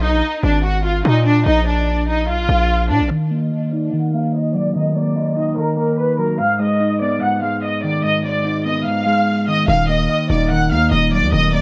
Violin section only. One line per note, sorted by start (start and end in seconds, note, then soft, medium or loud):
0.03 0.41 D#4 medium
0.03 0.42 D#5 medium
0.43 0.61 D4 medium
0.43 0.61 D5 medium
0.64 0.81 F#4 medium
0.64 0.82 F#5 medium
0.84 1.01 F4 medium
0.84 1.02 F5 medium
1.05 1.22 D#4 medium
1.05 1.23 D#5 medium
1.26 1.43 D4 loud
1.26 1.43 D5 medium
1.46 1.63 D#4 loud
1.46 1.64 D#5 medium
1.67 2.05 D4 medium
1.67 2.06 D5 medium
2.08 2.25 D#4 medium
2.08 2.26 D#5 medium
2.28 2.86 F4 loud
2.28 2.87 F5 medium
2.90 3.07 D4 medium
2.90 3.07 D5 medium
3.11 3.28 F5 loud
3.11 3.28 F6 medium
3.31 3.70 D#5 medium
3.31 3.70 D#6 medium
3.72 3.90 D5 medium
3.72 3.90 D6 medium
3.93 4.10 F#5 medium
3.93 4.11 F#6 medium
4.13 4.31 F5 medium
4.13 4.31 F6 medium
4.34 4.51 D#5 medium
4.34 4.51 D#6 medium
4.55 4.72 D5 medium
4.55 4.72 D6 medium
4.75 4.92 D#5 loud
4.75 4.93 D#6 medium
4.96 5.34 D5 medium
4.96 5.35 D6 medium
5.37 5.54 D#5 medium
5.37 5.54 D#6 medium
5.57 5.74 A#4 medium
5.57 5.75 A#5 medium
5.78 5.95 A#4 medium
5.78 5.95 A#5 medium
5.98 6.15 B4 medium
5.98 6.16 B5 medium
6.19 6.36 A#4 medium
6.19 6.36 A#5 medium
6.40 6.57 F5 medium
6.40 6.57 F6 medium
6.60 6.99 D#5 medium
6.60 6.99 D#6 medium
7.01 7.18 D5 medium
7.01 7.19 D6 medium
7.22 7.39 F#5 medium
7.22 7.40 F#6 medium
7.42 7.59 F5 medium
7.42 7.60 F6 soft
7.63 7.80 D#5 medium
7.63 7.80 D#6 medium
7.83 8.00 D5 medium
7.83 8.01 D6 medium
8.03 8.21 D#5 loud
8.03 8.21 D#6 medium
8.24 8.63 D5 medium
8.24 8.63 D6 medium
8.65 8.83 D#5 medium
8.65 8.83 D#6 medium
8.86 9.44 F5 medium
8.86 9.44 F6 medium
9.48 9.65 D#5 medium
9.48 9.65 D#6 medium
9.68 9.85 F5 loud
9.68 9.86 F6 medium
9.89 10.27 D#5 medium
9.89 10.28 D#6 medium
10.30 10.47 D5 medium
10.30 10.48 D6 medium
10.51 10.68 F#5 medium
10.51 10.68 F#6 medium
10.71 10.88 F5 medium
10.71 10.89 F6 medium
10.91 11.09 D#5 medium
10.91 11.09 D#6 medium
11.12 11.29 D5 medium
11.12 11.30 D6 medium
11.33 11.50 D#5 loud
11.33 11.50 D#6 medium
11.53 11.62 D5 medium
11.53 11.62 D6 medium